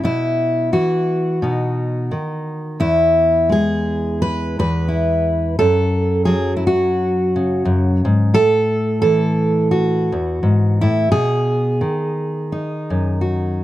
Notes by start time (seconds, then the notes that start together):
0.04 B2 E4
0.73 E3 F#4
1.42 B2 D#4
2.11 D#3
2.80 E2 E4
3.49 G#3 G#4
4.22 B4
4.59 E2 B4
4.88 E4
5.59 F#2 A4
6.25 F#3 G#4
6.57 E4
6.67 F#4
7.36 C#3
7.65 F#2
8.05 G#2
8.34 A2 A4
9.02 E3 A4
9.71 F#4
10.12 E2
10.43 G#2
10.81 A2 E4
11.12 B2 G#4
11.81 D#3
12.52 D#4
12.90 F#2
13.21 F#4